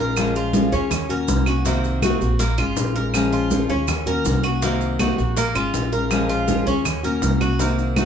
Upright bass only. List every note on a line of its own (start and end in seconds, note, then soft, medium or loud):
0.00 0.66 A#1 loud
0.72 1.24 D#2 loud
1.28 2.15 C2 medium
2.21 2.56 A#1 loud
2.58 2.76 G#1 medium
2.77 3.64 A#1 loud
3.69 4.21 D#2 loud
4.25 5.12 C2 medium
5.18 5.53 A#1 loud
5.55 5.73 G#1 medium
5.74 6.61 A#1 medium
6.67 7.19 D#2 loud
7.22 8.05 C2 loud